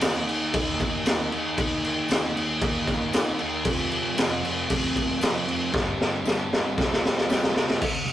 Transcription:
0.01 0.26 D#3 loud
0.01 0.27 A#3 medium
0.01 0.28 D#4 loud
0.01 snare loud
0.01 tambourine loud
0.01 crash loud
0.27 0.52 D#3 medium
0.27 0.52 A#3 medium
0.27 0.53 D#4 loud
0.27 crash medium
0.53 1.05 D#3 loud
0.53 1.05 A#3 loud
0.53 1.06 D#4 loud
0.53 kick loud
0.53 crash medium
0.80 kick medium
0.80 crash medium
1.06 1.31 D#3 medium
1.06 1.32 A#3 medium
1.06 1.32 D#4 medium
1.06 snare loud
1.06 tambourine medium
1.06 crash medium
1.32 1.56 D#3 medium
1.32 1.57 A#3 medium
1.32 1.58 D#4 loud
1.32 crash medium
1.57 2.08 D#3 loud
1.57 2.08 A#3 loud
1.57 2.09 D#4 loud
1.57 kick loud
1.57 crash medium
1.84 crash medium
2.08 2.34 D#3 medium
2.08 2.35 A#3 loud
2.08 2.36 D#4 loud
2.08 snare loud
2.08 tambourine medium
2.08 crash medium
2.36 2.61 D#3 loud
2.36 2.61 A#3 loud
2.36 2.62 D#4 loud
2.36 crash medium
2.61 3.11 D#3 loud
2.61 3.12 A#3 loud
2.61 3.12 D#4 loud
2.61 kick loud
2.61 crash medium
2.87 kick medium
2.87 snare soft
2.87 crash medium
3.13 3.38 D#3 medium
3.13 3.39 A#3 medium
3.13 3.39 D#4 loud
3.13 snare loud
3.13 tambourine loud
3.13 crash medium
3.39 3.64 D#3 medium
3.39 3.64 A#3 medium
3.39 3.64 D#4 medium
3.39 crash medium
3.65 4.16 F2 loud
3.65 4.16 C3 loud
3.65 4.16 F3 loud
3.65 kick loud
3.65 crash medium
3.91 crash medium
4.17 4.42 F2 medium
4.17 4.42 C3 loud
4.17 4.43 F3 loud
4.17 snare loud
4.17 tambourine loud
4.17 crash loud
4.43 4.67 F2 medium
4.43 4.69 C3 loud
4.43 4.69 F3 loud
4.43 crash medium
4.69 5.20 F2 loud
4.69 5.21 C3 loud
4.69 5.21 F3 loud
4.69 kick loud
4.69 crash loud
4.96 kick medium
4.96 crash medium
5.21 5.45 F2 medium
5.21 5.46 C3 medium
5.21 5.47 F3 loud
5.21 snare loud
5.21 tambourine medium
5.21 crash medium
5.46 5.71 F2 medium
5.46 5.71 C3 medium
5.46 5.72 F3 medium
5.46 crash medium
5.72 6.23 G2 medium
5.72 6.24 D3 loud
5.72 6.24 G3 loud
5.72 kick loud
5.72 snare medium
6.01 snare medium
6.24 6.50 G2 medium
6.24 6.50 D3 medium
6.24 6.51 G3 loud
6.24 snare medium
6.24 tambourine loud
6.51 6.75 G2 medium
6.51 6.76 D3 loud
6.51 6.76 G3 loud
6.51 snare medium
6.77 7.27 C3 medium
6.77 7.28 G3 loud
6.77 7.29 C4 loud
6.77 kick loud
6.77 snare medium
6.93 snare medium
7.05 snare loud
7.17 snare medium
7.29 7.53 C3 medium
7.29 7.53 G3 medium
7.29 7.54 C4 medium
7.29 snare loud
7.29 tambourine loud
7.43 snare loud
7.54 7.79 C3 medium
7.54 7.79 G3 medium
7.54 7.80 C4 loud
7.54 snare loud
7.70 snare loud
7.80 7.93 C3 loud
7.80 kick loud
7.80 crash loud
7.94 8.05 C3 medium
8.06 8.13 C3 medium
8.06 tambourine medium

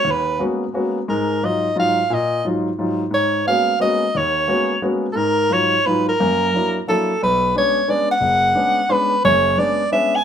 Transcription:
0.00 0.12 C#5 medium
0.05 0.35 D#2 medium
0.11 0.42 B4 medium
0.39 0.63 G#3 soft
0.39 0.63 A#3 soft
0.39 0.63 B3 soft
0.39 0.63 C#4 soft
0.39 0.63 F#4 medium
0.73 0.97 G#3 soft
0.73 0.97 A#3 soft
0.73 0.98 B3 soft
0.73 0.98 C#4 soft
0.73 0.97 F#4 medium
1.08 1.38 G#2 medium
1.08 1.37 G#3 medium
1.08 1.47 A#4 medium
1.43 1.66 G#2 soft
1.43 1.66 F#3 soft
1.43 1.65 D#4 soft
1.43 1.66 F4 medium
1.43 1.77 D#5 medium
1.75 1.99 G#2 soft
1.75 1.99 F#3 soft
1.75 1.99 D#4 soft
1.75 1.99 F4 medium
1.80 2.15 F5 medium
2.10 2.39 A#2 medium
2.10 2.46 D#5 medium
2.45 2.67 G#2 soft
2.45 2.67 F#3 soft
2.45 2.68 D#4 soft
2.45 2.68 F4 medium
2.79 3.01 G#2 soft
2.79 3.02 F#3 soft
2.79 3.02 D#4 soft
2.79 3.02 F4 medium
3.11 3.41 G#2 medium
3.11 3.45 C#5 medium
3.46 3.69 G#3 soft
3.46 3.69 A#3 soft
3.46 3.70 B3 soft
3.46 3.70 C#4 soft
3.46 3.70 F#4 medium
3.46 3.78 F5 medium
3.80 4.03 G#3 medium
3.80 4.03 A#3 soft
3.80 4.03 B3 soft
3.80 4.03 C#4 soft
3.80 4.03 F#4 medium
3.80 4.19 D#5 medium
4.15 4.44 D#2 medium
4.15 4.83 C#5 medium
4.48 4.71 G#3 soft
4.48 4.71 A#3 soft
4.48 4.71 B3 soft
4.48 4.71 C#4 soft
4.48 4.71 F#4 medium
4.82 5.05 G#3 soft
4.82 5.05 A#3 soft
4.82 5.05 B3 soft
4.82 5.05 C#4 soft
4.82 5.05 F#4 medium
5.13 5.45 G#2 medium
5.13 5.18 A4 medium
5.17 5.55 A#4 medium
5.50 5.73 G#2 medium
5.50 5.73 F#3 soft
5.50 5.73 D#4 soft
5.50 5.73 F4 medium
5.50 5.88 C#5 medium
5.86 6.08 G#2 medium
5.86 6.08 F#3 soft
5.86 6.09 D#4 soft
5.86 6.08 F4 medium
5.86 6.07 B4 medium
6.09 6.83 A#4 medium
6.20 6.48 F#2 medium
6.20 6.48 A#3 medium
6.54 6.76 F#3 soft
6.54 6.76 A#3 soft
6.54 6.76 D4 soft
6.54 6.77 E4 soft
6.88 7.10 F#3 soft
6.88 7.10 A#3 soft
6.88 7.10 D4 soft
6.88 7.10 E4 medium
6.88 7.19 A4 medium
7.22 7.50 B1 medium
7.22 7.53 B4 medium
7.55 7.78 G#3 soft
7.55 7.77 B3 soft
7.55 7.78 C#4 soft
7.55 7.78 D4 medium
7.55 7.92 C#5 medium
7.88 8.11 G#3 soft
7.88 8.11 B3 soft
7.88 8.11 C#4 soft
7.88 8.11 D4 medium
7.88 8.11 D5 medium
8.11 8.93 F#5 medium
8.21 8.50 F#1 medium
8.55 8.78 G#3 soft
8.55 8.78 B3 soft
8.55 8.78 C#4 soft
8.55 8.78 D4 medium
8.89 9.12 G#3 medium
8.89 9.12 B3 soft
8.89 9.12 C#4 soft
8.89 9.13 D4 medium
8.89 9.24 B4 medium
9.24 9.53 F#1 medium
9.24 9.53 F#2 medium
9.24 9.60 C#5 medium
9.57 9.80 G#3 soft
9.57 9.80 B3 soft
9.57 9.80 C#4 soft
9.57 9.80 D4 medium
9.57 9.92 D5 medium
9.92 10.14 G#3 medium
9.92 10.15 B3 soft
9.92 10.15 C#4 medium
9.92 10.15 D4 medium
9.92 10.17 E5 medium
10.16 10.24 G#5 loud

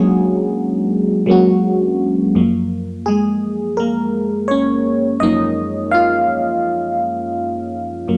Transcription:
0.00 1.26 F#3 medium
0.00 1.27 G#3 medium
0.00 1.29 A#3 medium
0.00 1.30 C#4 medium
0.00 2.37 D4 medium
0.00 2.37 D#4 medium
0.00 1.31 F#4 medium
0.00 1.10 G#4 medium
1.26 2.20 F#3 medium
1.26 2.20 G#3 medium
1.26 2.21 A#3 medium
1.26 2.21 C#4 medium
1.31 2.22 F#4 medium
2.35 5.17 F#2 soft
2.35 5.17 F3 soft
2.35 3.79 A#3 medium
3.06 3.75 G#3 medium
3.06 3.74 G#4 medium
3.77 4.46 A#3 medium
3.77 4.45 A#4 medium
4.48 5.18 C#4 medium
4.48 5.16 C#5 medium
5.20 6.24 F#2 soft
5.20 6.25 F3 soft
5.20 6.25 A#3 medium
5.20 5.90 D#4 medium
5.20 5.94 D#5 medium
5.91 7.32 F4 medium
5.91 7.31 F5 medium
8.08 8.17 F#2 soft
8.08 8.17 F#3 soft
8.08 8.17 A#3 medium

